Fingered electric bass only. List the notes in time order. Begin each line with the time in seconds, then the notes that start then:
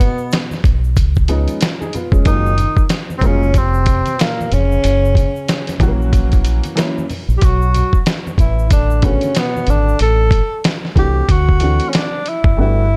0.64 B1
0.96 C#2
2.12 F1
2.26 F#1
3.21 F1
4.52 F1
4.84 F#1
5.80 A#1
7.28 A#1
7.42 B1
8.38 A1
9.67 G#1
10.00 A1
10.96 C2
11.29 D2
12.44 F#1
12.58 G1